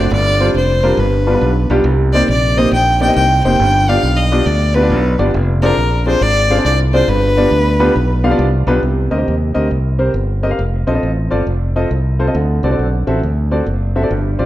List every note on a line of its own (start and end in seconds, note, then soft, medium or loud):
0.00 0.12 D5 loud
0.11 0.48 G1 loud
0.11 0.80 G2 medium
0.11 0.53 D5 loud
0.40 0.51 G3 medium
0.40 0.51 C4 medium
0.40 0.52 D4 medium
0.40 0.52 F4 medium
0.40 0.52 C5 medium
0.54 0.92 F1 medium
0.54 1.02 C5 medium
0.83 0.95 G3 medium
0.83 0.95 C4 medium
0.83 0.95 D4 medium
0.83 0.95 F4 medium
0.83 0.95 A#4 medium
0.97 1.35 G1 loud
0.97 1.67 G2 medium
0.97 1.71 B4 medium
1.27 1.33 G3 medium
1.27 1.33 B3 medium
1.27 1.33 D4 medium
1.27 1.33 F4 medium
1.27 1.33 B4 medium
1.34 1.49 G3 medium
1.34 1.49 B3 medium
1.34 1.49 D4 medium
1.34 1.49 F4 medium
1.34 1.49 B4 medium
1.41 1.66 B1 medium
1.70 1.83 B1 medium
1.70 1.82 G3 medium
1.70 1.82 B3 medium
1.70 1.82 D4 medium
1.70 1.82 F4 medium
1.70 1.82 G4 loud
1.84 2.22 C2 loud
1.84 2.53 C3 medium
2.13 2.25 A#3 medium
2.13 2.25 C4 medium
2.13 2.25 D#4 medium
2.13 2.26 G4 medium
2.13 2.26 C5 medium
2.13 2.28 D5 loud
2.28 2.66 A#1 medium
2.28 2.60 D5 loud
2.57 2.69 A#3 medium
2.57 2.69 C4 medium
2.57 2.69 D#4 medium
2.57 2.69 G4 medium
2.57 2.69 C5 medium
2.57 2.73 D#5 loud
2.72 3.09 A#1 loud
2.72 3.00 G5 loud
3.01 3.06 A#3 medium
3.01 3.07 C4 medium
3.01 3.07 D#4 medium
3.01 3.07 G4 medium
3.01 3.07 D5 medium
3.01 3.15 G5 loud
3.08 3.23 A#3 medium
3.08 3.23 C4 medium
3.08 3.23 D#4 medium
3.08 3.23 G4 medium
3.08 3.23 D#5 medium
3.16 3.41 C2 loud
3.16 3.42 G5 loud
3.44 3.57 F1 loud
3.44 3.56 A#3 medium
3.44 3.56 C4 medium
3.44 3.56 D#4 medium
3.44 3.56 G4 medium
3.44 3.56 C5 medium
3.44 3.91 G5 loud
3.59 3.97 G1 loud
3.59 4.28 G2 medium
3.89 4.00 B3 medium
3.89 4.00 D4 medium
3.89 4.00 F4 medium
3.89 4.00 G4 medium
3.89 4.00 D5 medium
3.89 4.19 F5 loud
4.03 4.40 B1 medium
4.17 4.48 D#5 medium
4.32 4.43 B3 medium
4.32 4.43 D4 medium
4.32 4.43 F4 medium
4.32 4.43 G4 medium
4.32 4.43 D5 medium
4.46 4.92 D2 medium
4.46 4.76 D5 medium
4.75 4.81 B3 medium
4.75 4.81 D4 medium
4.75 4.81 F4 medium
4.75 4.81 G4 medium
4.75 5.18 B4 medium
4.75 4.81 B4 medium
4.82 4.97 B3 medium
4.82 4.97 D4 medium
4.82 4.97 F4 medium
4.82 4.97 G4 medium
4.82 4.97 D5 medium
4.90 5.14 B1 loud
5.18 5.32 G1 loud
5.18 5.30 B3 medium
5.18 5.30 D4 medium
5.18 5.30 F4 medium
5.18 5.30 G4 medium
5.18 5.30 D5 medium
5.34 5.71 F1 loud
5.62 5.74 C4 medium
5.62 5.74 D4 medium
5.62 5.74 F4 medium
5.62 5.74 G#4 medium
5.62 6.03 A#4 loud
5.62 5.74 D5 medium
5.77 6.14 A#1 medium
6.06 6.17 C4 medium
6.06 6.18 D4 medium
6.06 6.18 F4 medium
6.06 6.18 G#4 medium
6.06 6.24 C5 loud
6.06 6.18 D5 medium
6.21 6.58 G#1 loud
6.21 6.65 D5 loud
6.50 6.56 C4 medium
6.50 6.56 D4 medium
6.50 6.56 F4 medium
6.50 6.56 G#4 medium
6.50 6.56 F5 medium
6.58 6.72 C4 medium
6.58 6.72 D4 medium
6.58 6.72 F4 medium
6.58 6.72 G#4 medium
6.58 6.72 D5 medium
6.65 7.02 C2 loud
6.65 6.78 D5 loud
6.93 7.05 C4 medium
6.93 7.05 D4 medium
6.93 7.05 F4 medium
6.93 7.05 G#4 medium
6.93 7.11 C5 loud
6.93 7.05 D5 medium
7.08 7.45 G1 loud
7.08 7.76 G2 medium
7.08 8.40 B4 loud
7.37 7.48 B3 medium
7.37 7.48 D4 medium
7.37 7.48 F4 medium
7.37 7.48 G4 medium
7.37 7.48 D5 medium
7.51 7.89 D2 medium
7.80 7.91 B3 loud
7.80 7.91 D4 medium
7.80 7.91 F4 medium
7.80 7.91 G4 medium
7.80 7.92 B4 loud
7.96 8.33 B1 medium
8.24 8.29 B3 medium
8.24 8.29 D4 medium
8.24 8.29 F4 medium
8.24 8.30 G4 medium
8.24 8.30 F5 loud
8.31 8.46 B3 medium
8.31 8.46 D4 medium
8.31 8.46 F4 medium
8.31 8.46 G4 medium
8.31 8.46 D5 medium
8.39 8.63 C2 medium
8.67 8.80 B1 medium
8.67 8.79 B3 medium
8.67 8.79 D4 medium
8.67 8.79 F4 medium
8.67 8.79 G4 medium
8.67 8.79 B4 loud
8.83 9.07 C2 medium
8.83 9.51 C3 medium
9.11 9.24 D2 medium
9.11 9.17 C4 medium
9.11 9.17 G4 medium
9.11 9.17 A#4 medium
9.11 9.17 D#5 medium
9.18 9.33 C4 medium
9.18 9.33 G4 medium
9.18 9.33 A#4 medium
9.18 9.34 D#5 medium
9.28 9.52 D#2 medium
9.54 9.69 D2 medium
9.54 9.66 C4 medium
9.54 9.66 G4 medium
9.54 9.66 A#4 medium
9.54 9.66 D#5 medium
9.71 10.08 C2 medium
9.99 10.10 C4 medium
9.99 10.10 G4 medium
9.99 10.11 A#4 medium
9.99 10.11 C5 medium
10.14 10.52 G1 medium
10.43 10.49 C4 medium
10.43 10.49 G4 medium
10.43 10.49 A#4 medium
10.43 10.49 D#5 medium
10.51 10.58 C4 medium
10.51 10.58 G4 medium
10.51 10.59 A#4 medium
10.51 10.59 F5 medium
10.59 10.83 F1 medium
10.87 11.00 A#1 medium
10.87 10.93 C4 medium
10.87 10.93 F4 medium
10.87 10.93 A4 medium
10.87 10.93 D#5 medium
10.94 11.09 C4 medium
10.94 11.10 F4 medium
10.94 11.10 A4 medium
10.94 11.10 D#5 medium
11.03 11.27 A1 medium
11.30 11.45 G1 medium
11.30 11.42 C4 medium
11.30 11.42 F4 medium
11.30 11.43 A4 medium
11.30 11.43 D5 medium
11.47 11.84 F1 medium
11.76 11.87 C4 medium
11.76 11.87 F4 medium
11.76 11.87 A4 medium
11.76 11.87 D#5 medium
11.91 12.28 C2 medium
12.19 12.25 C4 medium
12.19 12.25 F4 medium
12.19 12.25 A4 medium
12.19 12.25 C5 medium
12.27 12.35 C4 medium
12.27 12.35 F4 medium
12.27 12.35 A4 medium
12.27 12.35 D#5 medium
12.35 12.59 D2 medium
12.35 13.03 D3 medium
12.63 12.76 C2 medium
12.63 12.69 C4 medium
12.63 12.69 F#4 medium
12.63 12.69 A4 medium
12.63 12.69 D5 medium
12.71 12.86 C4 medium
12.71 12.86 F#4 medium
12.71 12.86 A4 medium
12.71 12.86 D5 medium
12.79 13.03 B1 medium
13.07 13.20 A1 medium
13.07 13.19 C4 medium
13.07 13.19 F#4 medium
13.07 13.19 A4 medium
13.07 13.19 E5 medium
13.23 13.60 D2 medium
13.51 13.63 C4 medium
13.51 13.63 F#4 medium
13.51 13.63 A4 medium
13.51 13.63 D5 medium
13.66 14.04 F#1 medium
13.96 14.01 C4 medium
13.96 14.01 F#4 medium
13.96 14.01 A4 medium
13.96 14.01 E5 medium
14.03 14.11 C4 medium
14.03 14.11 F#4 medium
14.03 14.11 A4 medium
14.03 14.11 D5 medium
14.11 14.35 G1 medium
14.11 14.46 G2 medium
14.39 14.46 A#1 medium
14.39 14.45 C4 medium
14.39 14.45 F4 medium
14.39 14.45 G4 medium
14.39 14.45 D5 medium